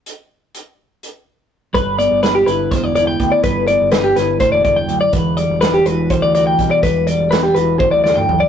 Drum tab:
HH |x---x---x-----|x-x-x-x-x-x-x-|x-x-x-x-x-x-x-|x-x-x-x-x-x-x-|
SD |--------------|----o---o-----|----o-o-------|----o---------|
T1 |--------------|--------------|--------------|--------------|
T2 |--------------|--------------|--------------|--------------|
FT |--------------|--------------|--------------|--------------|
BD |--------------|o-------o---o-|o-------o-o---|o-------o---o-|

HH |x-x-x-x-------|
SD |----o-----o---|
T1 |--------o-----|
T2 |-----------o--|
FT |------------o-|
BD |o-------o-----|